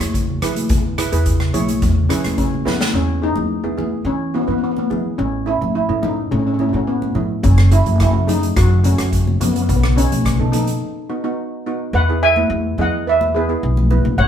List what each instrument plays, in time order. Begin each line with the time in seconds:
Already playing: steel pan E4 G#4 C#5
0.00 upright bass E2, cross-stick, closed hi-hat, high conga
0.14 kick, closed hi-hat
0.29 high conga
0.42 upright bass E3, steel pan E4 G#4 B4, cross-stick, closed hi-hat, low conga
0.56 closed hi-hat, high conga
0.69 upright bass E2, kick, closed hi-hat
0.98 steel pan E4 G#4 B4, cross-stick, closed hi-hat
1.12 upright bass E2, steel pan E4 G#4 B4, closed hi-hat
1.26 kick, closed hi-hat
1.40 cross-stick
1.54 upright bass B1, steel pan E4 G#4 C#5, closed hi-hat, high conga, low conga
1.69 closed hi-hat, high conga
1.82 upright bass E2, kick, closed hi-hat, low conga
2.09 steel pan C#4 E4 G#4 B4, cross-stick, closed hi-hat, low conga
2.24 upright bass E2, cross-stick, closed hi-hat, high conga
2.38 steel pan C#4, kick, closed hi-hat
2.54 high conga
2.65 upright bass E3, steel pan B3 E4 G#4 B4, snare, low conga
2.80 snare, high conga
2.93 upright bass E2, steel pan C#4
3.22 steel pan B3 D#4 E4 G#4
3.36 upright bass E2, high conga, low conga
3.64 upright bass E3, steel pan B3 E4 G#4
3.78 steel pan B3 E4 G#4, high conga, low conga
4.05 upright bass E3, steel pan C#4
4.34 steel pan B3 E4 F#4
4.41 steel pan B3
4.47 upright bass E3, steel pan B3 E4 B4
4.58 steel pan B3
4.64 steel pan B3
4.71 steel pan B3
4.77 steel pan B3, high conga
4.90 upright bass E3, steel pan B3 E4 G#4, low conga
5.18 upright bass A1, steel pan C#4
5.46 steel pan A3 C#4 E4
5.61 upright bass A1, high conga, low conga
5.75 steel pan E4
5.89 upright bass A2, steel pan A3 C#4 E4
6.03 steel pan A3 C#4 D#4 E4, high conga, low conga
6.31 upright bass A2, steel pan C#4
6.39 steel pan C#4
6.47 steel pan C#4
6.54 steel pan C#4
6.59 steel pan A3 C#4 E4, high conga
6.69 steel pan C#4
6.73 upright bass A2, steel pan A3 C#4 F#4
6.87 steel pan B3
7.02 high conga
7.15 upright bass A2, steel pan A3 C#4 E4, low conga
7.43 upright bass F#1, steel pan C#4, kick, closed hi-hat
7.58 cross-stick
7.71 steel pan A3 C#4 E4 F#4, closed hi-hat
7.86 upright bass F#1, closed hi-hat, high conga, low conga
8.00 steel pan E4, kick, cross-stick, closed hi-hat
8.12 upright bass F#2, steel pan A3 C#4 F#4
8.27 steel pan A3 C#4 D#4 G#4, closed hi-hat, high conga, low conga
8.43 closed hi-hat
8.56 upright bass F#2, steel pan F#4, kick, cross-stick, closed hi-hat
8.84 steel pan A3 C#4 F#4, closed hi-hat, high conga
8.98 upright bass F#2, steel pan A3 C#4 F#4, cross-stick, closed hi-hat
9.13 kick, closed hi-hat
9.27 high conga
9.40 upright bass F#2, steel pan A3 B3 C#4 F#4, closed hi-hat, low conga
9.48 steel pan B3
9.54 steel pan B3, closed hi-hat
9.62 steel pan B3
9.69 upright bass B1, steel pan B3, kick, closed hi-hat
9.77 steel pan B3
9.83 steel pan B3, cross-stick
9.96 steel pan B3 C#4 D#4 F#4, closed hi-hat
10.12 upright bass B1, closed hi-hat, high conga, low conga
10.25 kick, cross-stick, closed hi-hat
10.39 upright bass B2, steel pan B3 D#4 A4
10.52 steel pan B3 D#4 A4, closed hi-hat, high conga, low conga
10.67 closed hi-hat
11.10 steel pan B3 D#4 F#4
11.24 steel pan B3 D#4 F#4
11.66 steel pan B3 D#4 F#4
11.93 upright bass E2, steel pan B4 F#5
12.09 steel pan B3 E4 G#4
12.23 steel pan E5 G#5
12.36 steel pan B3 E4 B4, high conga
12.50 upright bass E2, high conga
12.78 upright bass E2, steel pan B3 E4 G#4 D#5 F#5, low conga
13.07 steel pan B4 E5
13.21 high conga
13.35 steel pan B3 E4 G#4 B4
13.49 steel pan B3 E4 G#4
13.63 upright bass B1
13.77 high conga, low conga
13.91 steel pan B3 E4 B4, low conga
14.05 upright bass A#1, high conga
14.18 upright bass A1, steel pan C#5 F#5